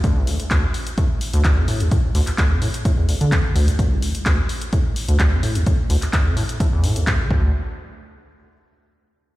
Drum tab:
HH |x-oxx-oxx-oxx-ox|x-oxx-oxx-oxx-ox|x-oxx-oxx-oxx-ox|x-oxx-oxx-oxx---|
CP |----x-------x---|---xx-------x---|----x-------x---|---xx-------x---|
BD |o---o---o---o---|o---o---o---o---|o---o---o---o---|o---o---o---o-o-|

HH |----------------|
CP |----------------|
BD |----------------|